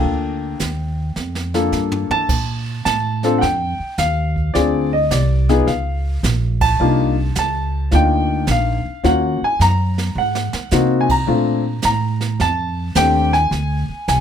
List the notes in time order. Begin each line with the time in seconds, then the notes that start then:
Already playing: A#3 D4 F4 A4 G5
0.04 D2, brush sweep
0.60 D#2, snare, hi-hat pedal
1.16 F2, snare
1.35 snare
1.54 A#3 D4 F4 A4, snare
1.72 G2, snare, hi-hat pedal
1.92 floor tom
2.10 A5, muted upright bass stroke, floor tom
2.29 A#2, brush sweep, kick, snare, crash
2.85 A2 A5, snare, hi-hat pedal
3.23 C4 D4 F4 A4, snare
3.38 F2 F#5 G5, brush sweep, snare
3.79 muted upright bass stroke
3.98 D#2 F5, snare, hi-hat pedal
4.36 kick
4.54 D2 C4 D4 F4 G#4 D5, brush sweep, snare
4.93 D#5
5.11 C2 D5, snare, hi-hat pedal
5.49 B3 D#4 F4 G#4, snare
5.67 C#2 F5, brush sweep, snare
6.23 A#1, snare, hi-hat pedal
6.61 A5, kick, crash
6.80 C2 A#3 D4 D#4 F4, brush sweep
7.35 C#2 A5, snare, hi-hat pedal
7.91 D2 A#3 D4 D#4 F4 G5, brush sweep, snare
8.47 A#1, snare, hi-hat pedal
8.51 F5
8.85 muted upright bass stroke
9.03 D#2 A#3 C#4 F4 F#4 F#5, brush sweep, snare
9.42 G#5, muted upright bass stroke
9.59 F#2 A#5, snare, hi-hat pedal
9.98 snare
10.15 G#2 F#5
10.35 snare
10.53 muted upright bass stroke, snare
10.71 C3 A#3 C4 D#4 F#4, snare, hi-hat pedal
11.01 G#5
11.09 A#5, kick, crash
11.27 A#2 A3 C4 D4 F4, brush sweep
11.82 A2 A#5, snare, hi-hat pedal
12.21 snare
12.40 F2 A5, brush sweep, snare
12.95 D#2 A3 C4 D4 G4 G5, snare, hi-hat pedal
13.33 G#5, snare
13.51 D2, brush sweep, snare
13.89 muted upright bass stroke
14.08 C2 G#5, snare, hi-hat pedal